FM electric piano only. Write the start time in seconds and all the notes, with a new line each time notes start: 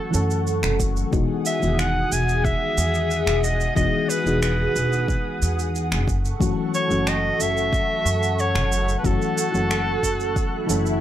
Already playing: E3 F#3 A3 C#4 F#4
0.10 E3 F#3 A3 C#4
0.15 A4
1.11 E3 G#3 B3 D#4 F#4
1.60 D#3 E3 G#3 B3
1.65 F#4
3.75 E3 G#3 B3 D#4 F#4
4.24 E3 G#3 B3 D#4
4.28 F#4
6.40 E3 F#3 A3 C#4 F#4
6.88 E3 F#3 A3 C#4
6.93 F#4
9.03 E3 F#3 A3 C#4 F#4
9.52 E3 F#3 A3 C#4
9.56 F#4
10.66 E3 F#3 A3 C#4
10.71 A4